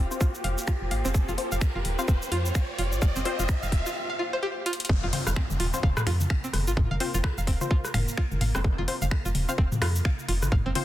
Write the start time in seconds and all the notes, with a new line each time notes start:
Already playing: A#3 F4 G4 C5 G5, riser
0.11 C4 F4 C5, shaker
0.21 F4, kick, shaker
0.35 shaker
0.44 F1 F5, open hi-hat
0.58 shaker
0.68 F4, finger snap, kick, shaker
0.81 F1
0.91 G#1 F5, open hi-hat
1.05 F1 C4, shaker
1.14 F1, kick, shaker
1.28 F1 F4, shaker
1.38 C4 F4 C5, open hi-hat
1.52 F1 F5, shaker
1.61 finger snap, kick, shaker
1.75 F1 F4
1.85 D#1, open hi-hat
1.99 C4 F4 C5 F5, shaker
2.08 D#1 C4, kick, shaker
2.22 shaker
2.31 F2 F4, open hi-hat
2.46 shaker
2.55 F5, finger snap, kick, shaker
2.78 F1 F4, open hi-hat
2.92 G#1, shaker
3.02 F1 F5, kick, shaker
3.16 F1 C4, shaker
3.25 C4 F4 C5, open hi-hat
3.39 F1 F4, shaker
3.49 finger snap, kick, shaker
3.63 F1 F5, shaker
3.72 D#1, kick, open hi-hat
3.86 F4, shaker
4.10 F5
4.19 F4
4.33 C5
4.43 G4
4.66 F4, closed hi-hat
4.73 closed hi-hat
4.80 closed hi-hat
4.85 closed hi-hat
4.89 F1 A#3 A#4, kick, downlifter
5.03 F1 F4
5.13 C4 F4 C5, open hi-hat, high tom
5.27 F1 F5, cross-stick, shaker
5.36 C4, finger snap, kick
5.50 F1, high tom, shaker
5.60 D#1 F4, open hi-hat
5.74 C4 F4 C5, shaker
5.83 D#1 F5, kick, high tom
5.97 cross-stick, mid tom, shaker
6.07 F2 F4, finger snap, open hi-hat
6.20 high tom, shaker
6.30 F5, finger snap, kick
6.44 C4, shaker
6.53 F1, cross-stick, open hi-hat, high tom
6.67 G#1 F4, shaker
6.77 F1, kick, mid tom
6.91 F1 F5, high tom
7.00 C4 F4 C5, open hi-hat
7.14 F1 F4, shaker
7.24 finger snap, kick, cross-stick, high tom
7.38 F1 F5, shaker
7.47 D#1 C4, kick, open hi-hat
7.61 C4 F4 C5, high tom, shaker
7.71 F4, kick
7.85 cross-stick, shaker
7.94 F1 F5, finger snap, mid tom, open hi-hat, high tom
8.08 shaker
8.18 F4, finger snap, kick
8.31 F1, high tom, shaker
8.41 G#1 F5, mid tom, open hi-hat
8.55 F1 C4, cross-stick, zap, shaker
8.64 F1 D#4, kick, high tom
8.78 F1 F4
8.88 C4 F4 C5, open hi-hat
9.02 F1 F5, high tom, shaker
9.11 finger snap, kick, cross-stick
9.25 F1 F4, shaker
9.35 D#1, open hi-hat, high tom
9.49 C4 F4 C5 F5, shaker
9.58 D#1 C4, kick
9.72 mid tom, high tom, shaker
9.81 F2 F4, finger snap, cross-stick, open hi-hat
9.96 shaker
10.05 F5, finger snap, kick, high tom
10.19 shaker
10.28 F1 F4, open hi-hat
10.42 G#1, cross-stick, high tom, shaker
10.52 F1 F5, kick, mid tom
10.66 F1 C4
10.75 C4 F4 C5, open hi-hat, high tom